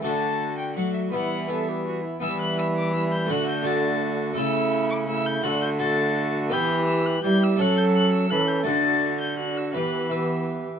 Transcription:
X:1
M:3/4
L:1/8
Q:1/4=167
K:Edor
V:1 name="Violin"
a3 g f e | f2 e2 z2 | e' f' e' d' e' g' | f' g' a'3 z |
e'3 d' e' g' | f' g' a'3 z | g'2 e' f' g' e' | f' g' f' e' f' g' |
a'3 g' f' e' | f'2 e'2 z2 |]
V:2 name="Viola"
F4 F2 | E2 A G F E | E4 E2 | F2 F4 |
E4 E2 | F2 F4 | G4 G2 | A4 A2 |
F4 F2 | G2 G3 z |]
V:3 name="Harpsichord"
[A,DF]6 | [B,E]2 [B,E]4 | [B,E]6 | [A,DF]2 [A,DF]4 |
[A,EA]6 | [FA]2 [FA]4 | [B,Ge]6 | [A,Ac]6 |
[A,Fd]6 | [EB]2 [EB]4 |]
V:4 name="Harpsichord" clef=bass
D,4 F,2 | E,4- E, z | E,6 | D,6 |
C,6 | D,6 | E,4 G,2 | F,4 E,2 |
D,6 | E,4- E, z |]
V:5 name="Trombone"
A,3 z A,2 | G,2 G,3 z | G,4 G,2 | A,2 A,4 |
A,4 A,2 | A,2 A,4 | E4 E2 | C4 C2 |
D3 z D2 | B,2 B,3 z |]
V:6 name="Cello" clef=bass
D,4 F,2 | E,4- E, z | E,6 | D,6 |
C,6 | D,6 | E,4 G,2 | F,4 E,2 |
D,6 | E,4- E, z |]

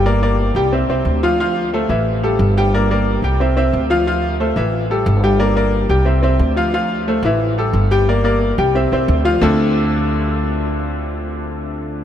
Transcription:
X:1
M:4/4
L:1/8
Q:1/4=180
K:Dm
V:1 name="Grand piano"
[B,Bd] [B,Bd]2 [G,Gg] [Cce] [Cce]2 [F,Ff] | [F,Ff]2 [A,Ac] [E,Ee]2 [G,GA]2 [G,Gg] | [B,Bd] [B,Bd]2 [G,Gg] [Cce] [Cce]2 [F,Ff] | [F,Ff]2 [A,Ac] [E,Ee]2 [G,GA]2 [G,Gg] |
[B,Bd] [B,Bd]2 [G,Gg] [Cce] [Cce]2 [F,Ff] | [F,Ff]2 [A,Ac] [E,Ee]2 [G,GA]2 [G,Gg] | [B,Bd] [B,Bd]2 [G,Gg] [Cce] [Cce]2 [F,Ff] | [D,A,CDFA]8- |
[D,A,CDFA]8 |]
V:2 name="Upright bass" clef=bass
G,,,3 C,,2 C,, D,,2- | D,,3 A,,,3 G,,,2- | G,,,3 C,,3 D,,2- | D,,3 A,,,3 G,,,2- |
G,,,3 C,,3 D,,2- | D,,3 A,,,3 G,,,2- | G,,,3 C,,2 C,, D,,2 | D,,8- |
D,,8 |]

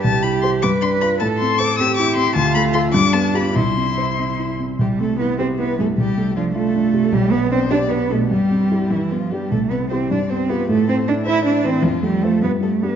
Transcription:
X:1
M:6/8
L:1/16
Q:3/8=102
K:C
V:1 name="Violin"
a2 b2 c'2 d'2 c'2 b2 | a2 c'2 d'2 e'2 d'2 c'2 | a2 b2 c'2 d'2 a2 b2 | c'8- c'2 z2 |
G2 A2 B2 c2 B2 A2 | G4 F2 A6 | G2 B2 c2 d2 B2 A2 | G6 E2 F2 G2 |
A2 B2 c2 d2 c2 B2 | A2 c2 d2 e2 d2 c2 | F2 G2 A2 B2 A2 B2 |]
V:2 name="Grand piano"
C,,2 E2 [Gc]2 G,,2 D2 [FB]2 | A,,2 C2 c2 C2 E2 C2 | D,,2 A,2 [FA]2 G,,2 B,2 [FG]2 | C,,2 C2 c2 C2 E2 C2 |
C,,2 C2 E2 G2 E2 G,,2 | C,,2 A,2 D2 F2 D2 C,2 | B,,,2 B,2 D2 G2 D2 B,,2 | G,,2 C2 [EG]2 G,,2 B,2 [DG]2 |
C,,2 C2 [EG]2 G,,2 B,2 [FG]2 | A,,2 A,2 E2 c2 E2 E,2 | F,,2 A,2 [Fc]2 G,,2 G,2 [DG]2 |]
V:3 name="Cello"
G6 B6 | A6 G6 | F6 D6 | E8- E z3 |
G,2 A,2 B,2 C2 B,2 A,2 | G,4 F,2 A,6 | G,2 B,2 C2 D2 B,2 A,2 | G,6 E,2 F,2 G,2 |
A,2 B,2 C2 D2 C2 B,2 | A,2 C2 D2 E2 D2 C2 | F,2 G,2 A,2 B,2 A,2 B,2 |]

